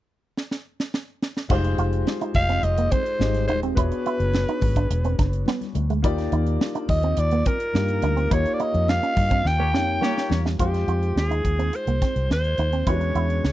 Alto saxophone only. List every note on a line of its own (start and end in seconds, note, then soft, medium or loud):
2.36 2.65 F5 loud
2.64 2.93 D#5 loud
2.91 3.47 C5 medium
3.48 3.61 C5 medium
3.76 5.71 B4 medium
6.90 7.20 D#5 medium
7.19 7.48 D5 medium
7.47 8.34 A#4 medium
8.33 8.55 C#5 medium
8.53 8.63 D5 medium
8.62 8.91 D#5 medium
8.89 9.48 F5 loud
9.47 10.31 G5 medium
10.61 11.19 G4 medium
11.18 11.77 G#4 medium
11.75 12.31 C5 medium
12.33 12.90 C5 medium
12.89 13.52 C#5 medium